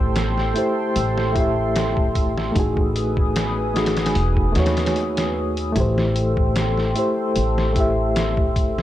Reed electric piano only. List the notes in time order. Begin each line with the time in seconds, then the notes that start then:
Already playing: A3 E4 G4 C5
0.54 A3 E4 G4 C5
1.32 A3 E4
1.37 G4 E5
2.52 A3 D#4
2.57 F#4 G#4
3.74 A3 D#4 F#4 G#4
4.52 A3 D#4
4.57 F#4 C#5
5.72 A3 E4
5.78 G4 C5
6.95 A3 E4 G4 C5
7.73 A3 E4
7.78 G4 E5